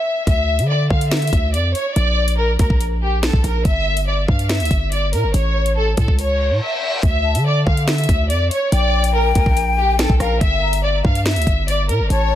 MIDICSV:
0, 0, Header, 1, 6, 480
1, 0, Start_track
1, 0, Tempo, 422535
1, 308, Time_signature, 4, 2, 24, 8
1, 14031, End_track
2, 0, Start_track
2, 0, Title_t, "Flute"
2, 0, Program_c, 0, 73
2, 8228, Note_on_c, 0, 81, 76
2, 8456, Note_off_c, 0, 81, 0
2, 9906, Note_on_c, 0, 79, 110
2, 11542, Note_off_c, 0, 79, 0
2, 11589, Note_on_c, 0, 77, 80
2, 11816, Note_off_c, 0, 77, 0
2, 12066, Note_on_c, 0, 82, 80
2, 12295, Note_off_c, 0, 82, 0
2, 13748, Note_on_c, 0, 81, 107
2, 14031, Note_off_c, 0, 81, 0
2, 14031, End_track
3, 0, Start_track
3, 0, Title_t, "Violin section"
3, 0, Program_c, 1, 48
3, 0, Note_on_c, 1, 76, 76
3, 281, Note_off_c, 1, 76, 0
3, 308, Note_on_c, 1, 76, 106
3, 759, Note_off_c, 1, 76, 0
3, 787, Note_on_c, 1, 74, 93
3, 1009, Note_off_c, 1, 74, 0
3, 1026, Note_on_c, 1, 77, 84
3, 1248, Note_off_c, 1, 77, 0
3, 1268, Note_on_c, 1, 76, 84
3, 1719, Note_off_c, 1, 76, 0
3, 1746, Note_on_c, 1, 74, 86
3, 1968, Note_off_c, 1, 74, 0
3, 1986, Note_on_c, 1, 73, 86
3, 2208, Note_off_c, 1, 73, 0
3, 2226, Note_on_c, 1, 74, 109
3, 2678, Note_off_c, 1, 74, 0
3, 2705, Note_on_c, 1, 70, 88
3, 2928, Note_off_c, 1, 70, 0
3, 2947, Note_on_c, 1, 70, 73
3, 3169, Note_off_c, 1, 70, 0
3, 3426, Note_on_c, 1, 67, 75
3, 3648, Note_off_c, 1, 67, 0
3, 3666, Note_on_c, 1, 69, 85
3, 3888, Note_off_c, 1, 69, 0
3, 3906, Note_on_c, 1, 70, 84
3, 4128, Note_off_c, 1, 70, 0
3, 4147, Note_on_c, 1, 76, 119
3, 4599, Note_off_c, 1, 76, 0
3, 4627, Note_on_c, 1, 74, 87
3, 4849, Note_off_c, 1, 74, 0
3, 4870, Note_on_c, 1, 77, 84
3, 5090, Note_off_c, 1, 77, 0
3, 5107, Note_on_c, 1, 76, 97
3, 5559, Note_off_c, 1, 76, 0
3, 5587, Note_on_c, 1, 74, 88
3, 5809, Note_off_c, 1, 74, 0
3, 5830, Note_on_c, 1, 70, 83
3, 6050, Note_off_c, 1, 70, 0
3, 6067, Note_on_c, 1, 73, 91
3, 6519, Note_off_c, 1, 73, 0
3, 6546, Note_on_c, 1, 69, 92
3, 6768, Note_off_c, 1, 69, 0
3, 6785, Note_on_c, 1, 69, 75
3, 7008, Note_off_c, 1, 69, 0
3, 7024, Note_on_c, 1, 73, 92
3, 7477, Note_off_c, 1, 73, 0
3, 7508, Note_on_c, 1, 76, 75
3, 7960, Note_off_c, 1, 76, 0
3, 7986, Note_on_c, 1, 76, 103
3, 8438, Note_off_c, 1, 76, 0
3, 8469, Note_on_c, 1, 74, 95
3, 8690, Note_off_c, 1, 74, 0
3, 8707, Note_on_c, 1, 77, 82
3, 8929, Note_off_c, 1, 77, 0
3, 8948, Note_on_c, 1, 76, 86
3, 9399, Note_off_c, 1, 76, 0
3, 9426, Note_on_c, 1, 74, 85
3, 9648, Note_off_c, 1, 74, 0
3, 9664, Note_on_c, 1, 73, 89
3, 9887, Note_off_c, 1, 73, 0
3, 9904, Note_on_c, 1, 74, 117
3, 10357, Note_off_c, 1, 74, 0
3, 10384, Note_on_c, 1, 70, 91
3, 10607, Note_off_c, 1, 70, 0
3, 10627, Note_on_c, 1, 70, 75
3, 10849, Note_off_c, 1, 70, 0
3, 11107, Note_on_c, 1, 67, 82
3, 11329, Note_off_c, 1, 67, 0
3, 11348, Note_on_c, 1, 69, 82
3, 11569, Note_off_c, 1, 69, 0
3, 11587, Note_on_c, 1, 70, 85
3, 11809, Note_off_c, 1, 70, 0
3, 11825, Note_on_c, 1, 76, 118
3, 12278, Note_off_c, 1, 76, 0
3, 12307, Note_on_c, 1, 74, 87
3, 12529, Note_off_c, 1, 74, 0
3, 12548, Note_on_c, 1, 77, 84
3, 12769, Note_off_c, 1, 77, 0
3, 12787, Note_on_c, 1, 76, 96
3, 13239, Note_off_c, 1, 76, 0
3, 13267, Note_on_c, 1, 74, 90
3, 13489, Note_off_c, 1, 74, 0
3, 13509, Note_on_c, 1, 70, 84
3, 13730, Note_off_c, 1, 70, 0
3, 13747, Note_on_c, 1, 73, 94
3, 14031, Note_off_c, 1, 73, 0
3, 14031, End_track
4, 0, Start_track
4, 0, Title_t, "808-style bass"
4, 0, Program_c, 2, 38
4, 307, Note_on_c, 2, 38, 106
4, 668, Note_on_c, 2, 50, 101
4, 685, Note_off_c, 2, 38, 0
4, 1010, Note_off_c, 2, 50, 0
4, 1028, Note_on_c, 2, 50, 108
4, 1489, Note_off_c, 2, 50, 0
4, 1508, Note_on_c, 2, 38, 110
4, 1750, Note_on_c, 2, 41, 98
4, 1767, Note_off_c, 2, 38, 0
4, 1977, Note_off_c, 2, 41, 0
4, 2230, Note_on_c, 2, 34, 116
4, 2920, Note_off_c, 2, 34, 0
4, 2948, Note_on_c, 2, 38, 107
4, 3063, Note_off_c, 2, 38, 0
4, 3068, Note_on_c, 2, 34, 100
4, 3759, Note_off_c, 2, 34, 0
4, 3788, Note_on_c, 2, 34, 100
4, 3903, Note_off_c, 2, 34, 0
4, 3909, Note_on_c, 2, 34, 109
4, 4139, Note_off_c, 2, 34, 0
4, 4148, Note_on_c, 2, 31, 114
4, 4839, Note_off_c, 2, 31, 0
4, 4867, Note_on_c, 2, 43, 112
4, 5227, Note_on_c, 2, 38, 95
4, 5244, Note_off_c, 2, 43, 0
4, 5342, Note_off_c, 2, 38, 0
4, 5347, Note_on_c, 2, 31, 109
4, 5828, Note_on_c, 2, 46, 101
4, 5845, Note_off_c, 2, 31, 0
4, 5948, Note_on_c, 2, 31, 101
4, 5965, Note_off_c, 2, 46, 0
4, 6062, Note_off_c, 2, 31, 0
4, 6067, Note_on_c, 2, 33, 108
4, 6759, Note_off_c, 2, 33, 0
4, 6789, Note_on_c, 2, 45, 105
4, 6904, Note_off_c, 2, 45, 0
4, 6909, Note_on_c, 2, 37, 105
4, 7388, Note_on_c, 2, 45, 100
4, 7405, Note_off_c, 2, 37, 0
4, 7502, Note_off_c, 2, 45, 0
4, 7988, Note_on_c, 2, 38, 110
4, 8349, Note_on_c, 2, 50, 105
4, 8366, Note_off_c, 2, 38, 0
4, 8691, Note_off_c, 2, 50, 0
4, 8709, Note_on_c, 2, 50, 109
4, 9170, Note_off_c, 2, 50, 0
4, 9189, Note_on_c, 2, 38, 115
4, 9429, Note_on_c, 2, 41, 97
4, 9446, Note_off_c, 2, 38, 0
4, 9657, Note_off_c, 2, 41, 0
4, 9909, Note_on_c, 2, 34, 115
4, 10600, Note_off_c, 2, 34, 0
4, 10629, Note_on_c, 2, 38, 107
4, 10741, Note_off_c, 2, 38, 0
4, 10748, Note_on_c, 2, 34, 99
4, 11439, Note_off_c, 2, 34, 0
4, 11469, Note_on_c, 2, 34, 102
4, 11581, Note_off_c, 2, 34, 0
4, 11588, Note_on_c, 2, 34, 109
4, 11819, Note_off_c, 2, 34, 0
4, 11829, Note_on_c, 2, 31, 113
4, 12520, Note_off_c, 2, 31, 0
4, 12548, Note_on_c, 2, 43, 107
4, 12907, Note_on_c, 2, 38, 101
4, 12924, Note_off_c, 2, 43, 0
4, 13022, Note_off_c, 2, 38, 0
4, 13029, Note_on_c, 2, 31, 114
4, 13506, Note_on_c, 2, 46, 103
4, 13523, Note_off_c, 2, 31, 0
4, 13627, Note_on_c, 2, 31, 97
4, 13645, Note_off_c, 2, 46, 0
4, 13742, Note_off_c, 2, 31, 0
4, 13747, Note_on_c, 2, 33, 116
4, 14031, Note_off_c, 2, 33, 0
4, 14031, End_track
5, 0, Start_track
5, 0, Title_t, "Reverse cymbal"
5, 0, Program_c, 3, 119
5, 7028, Note_on_c, 3, 60, 81
5, 7988, Note_off_c, 3, 60, 0
5, 14031, End_track
6, 0, Start_track
6, 0, Title_t, "Drums"
6, 307, Note_on_c, 9, 36, 124
6, 308, Note_on_c, 9, 42, 83
6, 421, Note_off_c, 9, 36, 0
6, 421, Note_off_c, 9, 42, 0
6, 669, Note_on_c, 9, 42, 86
6, 783, Note_off_c, 9, 42, 0
6, 1028, Note_on_c, 9, 36, 95
6, 1141, Note_off_c, 9, 36, 0
6, 1150, Note_on_c, 9, 42, 74
6, 1264, Note_off_c, 9, 42, 0
6, 1266, Note_on_c, 9, 38, 110
6, 1267, Note_on_c, 9, 42, 40
6, 1280, Note_on_c, 9, 26, 86
6, 1327, Note_off_c, 9, 42, 0
6, 1327, Note_on_c, 9, 42, 51
6, 1380, Note_off_c, 9, 38, 0
6, 1387, Note_off_c, 9, 42, 0
6, 1387, Note_on_c, 9, 42, 58
6, 1393, Note_off_c, 9, 26, 0
6, 1448, Note_off_c, 9, 42, 0
6, 1448, Note_on_c, 9, 42, 67
6, 1508, Note_off_c, 9, 42, 0
6, 1508, Note_on_c, 9, 36, 97
6, 1508, Note_on_c, 9, 42, 78
6, 1621, Note_off_c, 9, 36, 0
6, 1622, Note_off_c, 9, 42, 0
6, 1748, Note_on_c, 9, 42, 83
6, 1862, Note_off_c, 9, 42, 0
6, 1988, Note_on_c, 9, 42, 73
6, 2102, Note_off_c, 9, 42, 0
6, 2228, Note_on_c, 9, 42, 81
6, 2342, Note_off_c, 9, 42, 0
6, 2588, Note_on_c, 9, 42, 84
6, 2702, Note_off_c, 9, 42, 0
6, 2946, Note_on_c, 9, 42, 75
6, 2948, Note_on_c, 9, 36, 96
6, 3059, Note_off_c, 9, 42, 0
6, 3061, Note_off_c, 9, 36, 0
6, 3068, Note_on_c, 9, 36, 95
6, 3182, Note_off_c, 9, 36, 0
6, 3187, Note_on_c, 9, 42, 72
6, 3301, Note_off_c, 9, 42, 0
6, 3668, Note_on_c, 9, 38, 106
6, 3668, Note_on_c, 9, 42, 84
6, 3682, Note_on_c, 9, 26, 85
6, 3782, Note_off_c, 9, 38, 0
6, 3782, Note_off_c, 9, 42, 0
6, 3787, Note_on_c, 9, 36, 101
6, 3796, Note_off_c, 9, 26, 0
6, 3901, Note_off_c, 9, 36, 0
6, 3908, Note_on_c, 9, 42, 69
6, 4021, Note_off_c, 9, 42, 0
6, 4147, Note_on_c, 9, 36, 120
6, 4147, Note_on_c, 9, 42, 82
6, 4261, Note_off_c, 9, 36, 0
6, 4261, Note_off_c, 9, 42, 0
6, 4507, Note_on_c, 9, 42, 85
6, 4621, Note_off_c, 9, 42, 0
6, 4867, Note_on_c, 9, 36, 96
6, 4981, Note_off_c, 9, 36, 0
6, 4989, Note_on_c, 9, 42, 76
6, 5103, Note_off_c, 9, 42, 0
6, 5105, Note_on_c, 9, 38, 108
6, 5107, Note_on_c, 9, 42, 42
6, 5119, Note_on_c, 9, 26, 89
6, 5167, Note_off_c, 9, 42, 0
6, 5167, Note_on_c, 9, 42, 50
6, 5219, Note_off_c, 9, 38, 0
6, 5227, Note_off_c, 9, 42, 0
6, 5227, Note_on_c, 9, 42, 60
6, 5232, Note_off_c, 9, 26, 0
6, 5287, Note_off_c, 9, 42, 0
6, 5287, Note_on_c, 9, 42, 65
6, 5347, Note_on_c, 9, 36, 91
6, 5348, Note_off_c, 9, 42, 0
6, 5348, Note_on_c, 9, 42, 79
6, 5461, Note_off_c, 9, 36, 0
6, 5462, Note_off_c, 9, 42, 0
6, 5588, Note_on_c, 9, 42, 82
6, 5702, Note_off_c, 9, 42, 0
6, 5827, Note_on_c, 9, 42, 75
6, 5941, Note_off_c, 9, 42, 0
6, 6067, Note_on_c, 9, 42, 83
6, 6181, Note_off_c, 9, 42, 0
6, 6428, Note_on_c, 9, 42, 86
6, 6542, Note_off_c, 9, 42, 0
6, 6786, Note_on_c, 9, 42, 74
6, 6788, Note_on_c, 9, 36, 99
6, 6900, Note_off_c, 9, 42, 0
6, 6902, Note_off_c, 9, 36, 0
6, 6909, Note_on_c, 9, 36, 95
6, 7022, Note_off_c, 9, 36, 0
6, 7027, Note_on_c, 9, 42, 74
6, 7141, Note_off_c, 9, 42, 0
6, 7988, Note_on_c, 9, 36, 120
6, 7989, Note_on_c, 9, 42, 84
6, 8102, Note_off_c, 9, 36, 0
6, 8102, Note_off_c, 9, 42, 0
6, 8349, Note_on_c, 9, 42, 83
6, 8463, Note_off_c, 9, 42, 0
6, 8709, Note_on_c, 9, 36, 102
6, 8822, Note_off_c, 9, 36, 0
6, 8831, Note_on_c, 9, 42, 77
6, 8945, Note_off_c, 9, 42, 0
6, 8947, Note_on_c, 9, 38, 115
6, 8948, Note_on_c, 9, 42, 41
6, 8960, Note_on_c, 9, 26, 94
6, 9009, Note_off_c, 9, 42, 0
6, 9009, Note_on_c, 9, 42, 49
6, 9061, Note_off_c, 9, 38, 0
6, 9069, Note_off_c, 9, 42, 0
6, 9069, Note_on_c, 9, 42, 60
6, 9074, Note_off_c, 9, 26, 0
6, 9129, Note_off_c, 9, 42, 0
6, 9129, Note_on_c, 9, 42, 68
6, 9189, Note_on_c, 9, 36, 96
6, 9190, Note_off_c, 9, 42, 0
6, 9190, Note_on_c, 9, 42, 84
6, 9302, Note_off_c, 9, 36, 0
6, 9303, Note_off_c, 9, 42, 0
6, 9429, Note_on_c, 9, 42, 84
6, 9542, Note_off_c, 9, 42, 0
6, 9670, Note_on_c, 9, 42, 79
6, 9783, Note_off_c, 9, 42, 0
6, 9909, Note_on_c, 9, 42, 82
6, 10023, Note_off_c, 9, 42, 0
6, 10268, Note_on_c, 9, 42, 88
6, 10382, Note_off_c, 9, 42, 0
6, 10626, Note_on_c, 9, 42, 76
6, 10629, Note_on_c, 9, 36, 98
6, 10739, Note_off_c, 9, 42, 0
6, 10742, Note_off_c, 9, 36, 0
6, 10749, Note_on_c, 9, 36, 95
6, 10862, Note_off_c, 9, 36, 0
6, 10868, Note_on_c, 9, 42, 74
6, 10982, Note_off_c, 9, 42, 0
6, 11349, Note_on_c, 9, 38, 109
6, 11349, Note_on_c, 9, 42, 85
6, 11363, Note_on_c, 9, 26, 88
6, 11463, Note_off_c, 9, 38, 0
6, 11463, Note_off_c, 9, 42, 0
6, 11468, Note_on_c, 9, 36, 104
6, 11476, Note_off_c, 9, 26, 0
6, 11582, Note_off_c, 9, 36, 0
6, 11589, Note_on_c, 9, 37, 95
6, 11590, Note_on_c, 9, 42, 69
6, 11702, Note_off_c, 9, 37, 0
6, 11704, Note_off_c, 9, 42, 0
6, 11828, Note_on_c, 9, 36, 118
6, 11828, Note_on_c, 9, 42, 88
6, 11942, Note_off_c, 9, 36, 0
6, 11942, Note_off_c, 9, 42, 0
6, 12190, Note_on_c, 9, 42, 88
6, 12303, Note_off_c, 9, 42, 0
6, 12548, Note_on_c, 9, 36, 99
6, 12662, Note_off_c, 9, 36, 0
6, 12671, Note_on_c, 9, 42, 75
6, 12785, Note_off_c, 9, 42, 0
6, 12787, Note_on_c, 9, 38, 115
6, 12788, Note_on_c, 9, 42, 43
6, 12801, Note_on_c, 9, 26, 89
6, 12848, Note_off_c, 9, 42, 0
6, 12848, Note_on_c, 9, 42, 51
6, 12901, Note_off_c, 9, 38, 0
6, 12909, Note_off_c, 9, 42, 0
6, 12909, Note_on_c, 9, 42, 61
6, 12914, Note_off_c, 9, 26, 0
6, 12969, Note_off_c, 9, 42, 0
6, 12969, Note_on_c, 9, 42, 71
6, 13028, Note_on_c, 9, 36, 98
6, 13030, Note_off_c, 9, 42, 0
6, 13030, Note_on_c, 9, 42, 84
6, 13142, Note_off_c, 9, 36, 0
6, 13144, Note_off_c, 9, 42, 0
6, 13270, Note_on_c, 9, 42, 85
6, 13384, Note_off_c, 9, 42, 0
6, 13510, Note_on_c, 9, 42, 77
6, 13624, Note_off_c, 9, 42, 0
6, 13749, Note_on_c, 9, 42, 84
6, 13862, Note_off_c, 9, 42, 0
6, 14031, End_track
0, 0, End_of_file